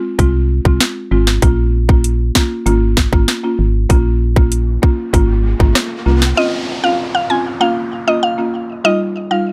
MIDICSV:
0, 0, Header, 1, 7, 480
1, 0, Start_track
1, 0, Tempo, 618557
1, 1106, Time_signature, 4, 2, 24, 8
1, 7392, End_track
2, 0, Start_track
2, 0, Title_t, "Synth pluck"
2, 0, Program_c, 0, 84
2, 4946, Note_on_c, 0, 75, 106
2, 5048, Note_off_c, 0, 75, 0
2, 5305, Note_on_c, 0, 77, 86
2, 5408, Note_off_c, 0, 77, 0
2, 5546, Note_on_c, 0, 77, 82
2, 5648, Note_off_c, 0, 77, 0
2, 5664, Note_on_c, 0, 80, 82
2, 5768, Note_off_c, 0, 80, 0
2, 5903, Note_on_c, 0, 77, 91
2, 6007, Note_off_c, 0, 77, 0
2, 6267, Note_on_c, 0, 75, 83
2, 6369, Note_off_c, 0, 75, 0
2, 6385, Note_on_c, 0, 77, 84
2, 6724, Note_off_c, 0, 77, 0
2, 6866, Note_on_c, 0, 75, 109
2, 6968, Note_off_c, 0, 75, 0
2, 7224, Note_on_c, 0, 77, 72
2, 7327, Note_off_c, 0, 77, 0
2, 7392, End_track
3, 0, Start_track
3, 0, Title_t, "Marimba"
3, 0, Program_c, 1, 12
3, 0, Note_on_c, 1, 56, 75
3, 0, Note_on_c, 1, 60, 70
3, 0, Note_on_c, 1, 65, 84
3, 126, Note_off_c, 1, 56, 0
3, 128, Note_off_c, 1, 60, 0
3, 129, Note_off_c, 1, 65, 0
3, 144, Note_on_c, 1, 56, 90
3, 146, Note_on_c, 1, 60, 82
3, 148, Note_on_c, 1, 65, 102
3, 294, Note_off_c, 1, 56, 0
3, 295, Note_off_c, 1, 60, 0
3, 296, Note_off_c, 1, 65, 0
3, 503, Note_on_c, 1, 56, 77
3, 505, Note_on_c, 1, 60, 72
3, 508, Note_on_c, 1, 65, 83
3, 836, Note_off_c, 1, 56, 0
3, 837, Note_off_c, 1, 60, 0
3, 838, Note_off_c, 1, 65, 0
3, 863, Note_on_c, 1, 56, 80
3, 865, Note_on_c, 1, 60, 71
3, 868, Note_on_c, 1, 65, 87
3, 1085, Note_off_c, 1, 56, 0
3, 1086, Note_off_c, 1, 60, 0
3, 1088, Note_off_c, 1, 65, 0
3, 1104, Note_on_c, 1, 58, 93
3, 1106, Note_on_c, 1, 61, 84
3, 1109, Note_on_c, 1, 65, 103
3, 1254, Note_off_c, 1, 58, 0
3, 1255, Note_off_c, 1, 61, 0
3, 1256, Note_off_c, 1, 65, 0
3, 1466, Note_on_c, 1, 58, 76
3, 1468, Note_on_c, 1, 61, 66
3, 1470, Note_on_c, 1, 65, 80
3, 1797, Note_off_c, 1, 58, 0
3, 1798, Note_off_c, 1, 61, 0
3, 1799, Note_off_c, 1, 65, 0
3, 1826, Note_on_c, 1, 58, 78
3, 1829, Note_on_c, 1, 61, 69
3, 1831, Note_on_c, 1, 65, 85
3, 2047, Note_off_c, 1, 58, 0
3, 2048, Note_off_c, 1, 61, 0
3, 2049, Note_off_c, 1, 65, 0
3, 2064, Note_on_c, 1, 58, 94
3, 2067, Note_on_c, 1, 61, 84
3, 2069, Note_on_c, 1, 65, 102
3, 2214, Note_off_c, 1, 58, 0
3, 2216, Note_off_c, 1, 61, 0
3, 2217, Note_off_c, 1, 65, 0
3, 2426, Note_on_c, 1, 58, 78
3, 2429, Note_on_c, 1, 61, 72
3, 2432, Note_on_c, 1, 65, 84
3, 2575, Note_off_c, 1, 58, 0
3, 2577, Note_off_c, 1, 61, 0
3, 2578, Note_off_c, 1, 65, 0
3, 2665, Note_on_c, 1, 58, 75
3, 2668, Note_on_c, 1, 61, 69
3, 2671, Note_on_c, 1, 65, 79
3, 2815, Note_off_c, 1, 58, 0
3, 2816, Note_off_c, 1, 61, 0
3, 2817, Note_off_c, 1, 65, 0
3, 3023, Note_on_c, 1, 58, 91
3, 3026, Note_on_c, 1, 61, 86
3, 3029, Note_on_c, 1, 65, 101
3, 3173, Note_off_c, 1, 58, 0
3, 3175, Note_off_c, 1, 61, 0
3, 3176, Note_off_c, 1, 65, 0
3, 3384, Note_on_c, 1, 58, 74
3, 3386, Note_on_c, 1, 61, 66
3, 3388, Note_on_c, 1, 65, 81
3, 3716, Note_off_c, 1, 58, 0
3, 3717, Note_off_c, 1, 61, 0
3, 3718, Note_off_c, 1, 65, 0
3, 3743, Note_on_c, 1, 58, 74
3, 3745, Note_on_c, 1, 61, 69
3, 3747, Note_on_c, 1, 65, 82
3, 3965, Note_off_c, 1, 58, 0
3, 3966, Note_off_c, 1, 61, 0
3, 3967, Note_off_c, 1, 65, 0
3, 3982, Note_on_c, 1, 58, 90
3, 3984, Note_on_c, 1, 61, 83
3, 3987, Note_on_c, 1, 65, 100
3, 4133, Note_off_c, 1, 58, 0
3, 4134, Note_off_c, 1, 61, 0
3, 4135, Note_off_c, 1, 65, 0
3, 4343, Note_on_c, 1, 58, 76
3, 4346, Note_on_c, 1, 61, 71
3, 4348, Note_on_c, 1, 65, 82
3, 4676, Note_off_c, 1, 58, 0
3, 4677, Note_off_c, 1, 61, 0
3, 4678, Note_off_c, 1, 65, 0
3, 4702, Note_on_c, 1, 58, 78
3, 4704, Note_on_c, 1, 61, 69
3, 4706, Note_on_c, 1, 65, 88
3, 4924, Note_off_c, 1, 58, 0
3, 4926, Note_off_c, 1, 61, 0
3, 4927, Note_off_c, 1, 65, 0
3, 4942, Note_on_c, 1, 60, 94
3, 4944, Note_on_c, 1, 61, 91
3, 4946, Note_on_c, 1, 65, 109
3, 5093, Note_off_c, 1, 60, 0
3, 5094, Note_off_c, 1, 61, 0
3, 5095, Note_off_c, 1, 65, 0
3, 5303, Note_on_c, 1, 60, 77
3, 5304, Note_on_c, 1, 61, 68
3, 5307, Note_on_c, 1, 65, 86
3, 5636, Note_off_c, 1, 60, 0
3, 5636, Note_off_c, 1, 61, 0
3, 5637, Note_off_c, 1, 65, 0
3, 5662, Note_on_c, 1, 60, 75
3, 5665, Note_on_c, 1, 61, 73
3, 5666, Note_on_c, 1, 65, 85
3, 5885, Note_off_c, 1, 60, 0
3, 5886, Note_off_c, 1, 61, 0
3, 5887, Note_off_c, 1, 65, 0
3, 5902, Note_on_c, 1, 58, 90
3, 5904, Note_on_c, 1, 61, 87
3, 5907, Note_on_c, 1, 65, 103
3, 6053, Note_off_c, 1, 58, 0
3, 6054, Note_off_c, 1, 61, 0
3, 6055, Note_off_c, 1, 65, 0
3, 6263, Note_on_c, 1, 58, 83
3, 6266, Note_on_c, 1, 61, 71
3, 6268, Note_on_c, 1, 65, 90
3, 6414, Note_off_c, 1, 58, 0
3, 6415, Note_off_c, 1, 61, 0
3, 6416, Note_off_c, 1, 65, 0
3, 6503, Note_on_c, 1, 58, 77
3, 6505, Note_on_c, 1, 61, 69
3, 6507, Note_on_c, 1, 65, 84
3, 6653, Note_off_c, 1, 58, 0
3, 6654, Note_off_c, 1, 61, 0
3, 6656, Note_off_c, 1, 65, 0
3, 6863, Note_on_c, 1, 55, 100
3, 6865, Note_on_c, 1, 63, 86
3, 6868, Note_on_c, 1, 65, 105
3, 7013, Note_off_c, 1, 55, 0
3, 7014, Note_off_c, 1, 63, 0
3, 7016, Note_off_c, 1, 65, 0
3, 7222, Note_on_c, 1, 55, 76
3, 7225, Note_on_c, 1, 63, 69
3, 7227, Note_on_c, 1, 65, 85
3, 7392, Note_off_c, 1, 55, 0
3, 7392, Note_off_c, 1, 63, 0
3, 7392, Note_off_c, 1, 65, 0
3, 7392, End_track
4, 0, Start_track
4, 0, Title_t, "FM bass"
4, 0, Program_c, 2, 39
4, 147, Note_on_c, 2, 36, 87
4, 467, Note_off_c, 2, 36, 0
4, 507, Note_on_c, 2, 36, 94
4, 613, Note_off_c, 2, 36, 0
4, 866, Note_on_c, 2, 32, 93
4, 1080, Note_off_c, 2, 32, 0
4, 1105, Note_on_c, 2, 34, 104
4, 1794, Note_off_c, 2, 34, 0
4, 2066, Note_on_c, 2, 32, 101
4, 2387, Note_off_c, 2, 32, 0
4, 2426, Note_on_c, 2, 32, 92
4, 2533, Note_off_c, 2, 32, 0
4, 2786, Note_on_c, 2, 32, 99
4, 3000, Note_off_c, 2, 32, 0
4, 3025, Note_on_c, 2, 34, 101
4, 3714, Note_off_c, 2, 34, 0
4, 3986, Note_on_c, 2, 32, 96
4, 4307, Note_off_c, 2, 32, 0
4, 4346, Note_on_c, 2, 32, 92
4, 4453, Note_off_c, 2, 32, 0
4, 4705, Note_on_c, 2, 36, 91
4, 4919, Note_off_c, 2, 36, 0
4, 7392, End_track
5, 0, Start_track
5, 0, Title_t, "Downlifter"
5, 0, Program_c, 3, 103
5, 4947, Note_on_c, 3, 60, 88
5, 7392, Note_off_c, 3, 60, 0
5, 7392, End_track
6, 0, Start_track
6, 0, Title_t, "Riser"
6, 0, Program_c, 4, 103
6, 3027, Note_on_c, 4, 60, 82
6, 4946, Note_off_c, 4, 60, 0
6, 7392, End_track
7, 0, Start_track
7, 0, Title_t, "Drums"
7, 146, Note_on_c, 9, 36, 87
7, 148, Note_on_c, 9, 42, 61
7, 224, Note_off_c, 9, 36, 0
7, 225, Note_off_c, 9, 42, 0
7, 506, Note_on_c, 9, 36, 87
7, 584, Note_off_c, 9, 36, 0
7, 625, Note_on_c, 9, 38, 118
7, 626, Note_on_c, 9, 42, 70
7, 702, Note_off_c, 9, 38, 0
7, 704, Note_off_c, 9, 42, 0
7, 986, Note_on_c, 9, 38, 65
7, 1064, Note_off_c, 9, 38, 0
7, 1104, Note_on_c, 9, 42, 82
7, 1105, Note_on_c, 9, 36, 108
7, 1182, Note_off_c, 9, 42, 0
7, 1183, Note_off_c, 9, 36, 0
7, 1466, Note_on_c, 9, 36, 96
7, 1544, Note_off_c, 9, 36, 0
7, 1585, Note_on_c, 9, 42, 78
7, 1663, Note_off_c, 9, 42, 0
7, 1825, Note_on_c, 9, 38, 125
7, 1827, Note_on_c, 9, 36, 95
7, 1902, Note_off_c, 9, 38, 0
7, 1905, Note_off_c, 9, 36, 0
7, 2068, Note_on_c, 9, 42, 63
7, 2146, Note_off_c, 9, 42, 0
7, 2304, Note_on_c, 9, 38, 122
7, 2305, Note_on_c, 9, 36, 90
7, 2382, Note_off_c, 9, 38, 0
7, 2383, Note_off_c, 9, 36, 0
7, 2426, Note_on_c, 9, 36, 89
7, 2504, Note_off_c, 9, 36, 0
7, 2545, Note_on_c, 9, 38, 71
7, 2547, Note_on_c, 9, 42, 73
7, 2623, Note_off_c, 9, 38, 0
7, 2625, Note_off_c, 9, 42, 0
7, 3025, Note_on_c, 9, 42, 80
7, 3026, Note_on_c, 9, 36, 111
7, 3103, Note_off_c, 9, 36, 0
7, 3103, Note_off_c, 9, 42, 0
7, 3386, Note_on_c, 9, 36, 93
7, 3464, Note_off_c, 9, 36, 0
7, 3505, Note_on_c, 9, 42, 78
7, 3583, Note_off_c, 9, 42, 0
7, 3748, Note_on_c, 9, 36, 95
7, 3825, Note_off_c, 9, 36, 0
7, 3986, Note_on_c, 9, 36, 83
7, 3987, Note_on_c, 9, 42, 66
7, 4064, Note_off_c, 9, 36, 0
7, 4065, Note_off_c, 9, 42, 0
7, 4346, Note_on_c, 9, 36, 89
7, 4424, Note_off_c, 9, 36, 0
7, 4464, Note_on_c, 9, 37, 99
7, 4464, Note_on_c, 9, 38, 116
7, 4466, Note_on_c, 9, 42, 71
7, 4542, Note_off_c, 9, 37, 0
7, 4542, Note_off_c, 9, 38, 0
7, 4543, Note_off_c, 9, 42, 0
7, 4826, Note_on_c, 9, 38, 66
7, 4903, Note_off_c, 9, 38, 0
7, 7392, End_track
0, 0, End_of_file